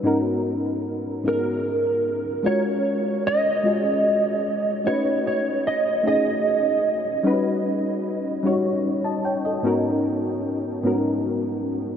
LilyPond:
<<
  \new Staff \with { instrumentName = "Clean electric guitar" } { \time 6/8 \key gis \dorian \tempo 4. = 50 r4. ais'4. | cis''4 dis''2 | cis''8 cis''8 dis''8 dis''4 r8 | r2. |
r2. | }
  \new Staff \with { instrumentName = "Reed electric piano" } { \time 6/8 \key gis \dorian << { r2. | r2. | r2. | r2 r16 <dis'' a''>16 <cis'' g''>16 <a' dis''>16~ |
<a' dis''>16 r2 r8. | } \\ { <gis, b cis' dis' fis' ais'>4~ <gis, b cis' dis' fis' ais'>16 r16 <gis, b cis' dis' fis' gis' ais'>4~ <gis, b cis' dis' fis' gis' ais'>16 r16 | <gis cis' eis' fis' ais'>4~ <gis cis' eis' fis' ais'>16 r16 <gis cis' eis' fis' gis'>4~ <gis cis' eis' fis' gis'>16 r16 | <a cis' dis' fis' b'>4~ <a cis' dis' fis' b'>16 r16 <a cis' dis' fis' gis'>4~ <a cis' dis' fis' gis'>16 r16 | <g cis' dis' fis' b'>4~ <g cis' dis' fis' b'>16 r16 <g cis' dis' fis' cis''>4~ <g cis' dis' fis' cis''>16 r16 |
<gis, b cis' dis' fis' ais'>4~ <gis, b cis' dis' fis' ais'>16 r16 <gis, b cis' dis' fis' ais'>4~ <gis, b cis' dis' fis' ais'>16 r16 | } >> }
>>